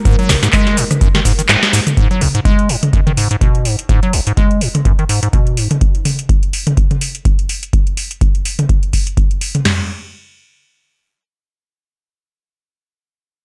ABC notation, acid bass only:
X:1
M:4/4
L:1/16
Q:"Swing 16ths" 1/4=125
K:G#m
V:1 name="Acid bass" clef=bass
G,, F, G,,, G,, G,2 G,, z F,, D, G,, D, G,, z G,, z | G,, F, G,,, G,, G,2 G,, z F,, D, G,, G,, B,,2 G,, z | G,, F, G,,, G,, G,2 G,, z F,, D, G,, G,, B,,2 G,, z | z16 |
z16 | z16 | z16 |]